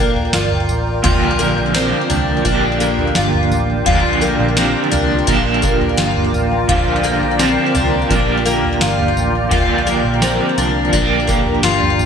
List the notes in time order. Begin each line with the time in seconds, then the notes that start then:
Already playing: A#1 A#3 F4 A#4 D5 G5
0.16 floor tom
0.33 G1 F4, snare, tambourine
0.51 floor tom
0.69 A1, floor tom, tambourine
1.03 A#1 A#2 D3 F3 A#3 D4 F4, kick, floor tom
1.07 G4
1.39 A#3, tambourine
1.58 A#1
1.73 F3 A#3 C4 F4, snare, tambourine
1.78 D4 G4
2.10 C2 D4, floor tom, tambourine
2.41 F3 D4, tambourine
2.46 A#1 A#3, kick
2.51 D4 G4
2.80 A#3, tambourine
2.99 floor tom
3.15 G1 F4, snare, tambourine
3.34 floor tom
3.51 A1, floor tom, tambourine
3.85 A#1 A#2 D3 F3 A#3 D4 F4 A#4, kick, floor tom
3.89 G4
4.21 A#3, tambourine
4.39 A#1
4.56 F3 A#3 C4 D4 G4, snare, tambourine
4.61 G4
4.80 A#4
4.92 C2 D4, floor tom, tambourine
5.24 F3 D4
5.28 A#1 A#3, kick, tambourine
5.33 D4 G4
5.62 A#3 A#4, kick, tambourine
5.81 floor tom
5.97 G1 F4, snare, tambourine
6.16 floor tom
6.33 A1, floor tom, tambourine
6.67 A#1 A#2 D3 F3 A#3 D4 F4 D5 G5, kick, floor tom
6.72 G4
7.03 A#3, tambourine
7.22 A#1
7.38 F3 A#3 C4, snare, tambourine
7.43 D4 G4
7.75 C2 D4, floor tom, tambourine
8.07 A#1 F3 D4 A#4, kick, tambourine
8.11 A#3
8.16 D4 G4
8.44 A#3 F4, tambourine
8.63 floor tom
8.81 G1 F4, snare, tambourine
8.99 floor tom
9.17 A1, floor tom, tambourine
9.49 A#1 A#2 D3 F3 A#3 D4 F4 A#4, kick, floor tom
9.53 G4
9.87 A#3, tambourine
10.05 A#1
10.20 F3 A#3 C4, snare, tambourine
10.24 D4 G4
10.58 C2 D4, tambourine
10.82 F4
10.89 F3
10.93 A#1 A#3 D4, kick, tambourine
10.97 D4
11.01 G4
11.27 A#3, kick, tambourine
11.46 floor tom
11.63 G1 F4, snare, tambourine
11.82 floor tom
11.99 A1, floor tom, tambourine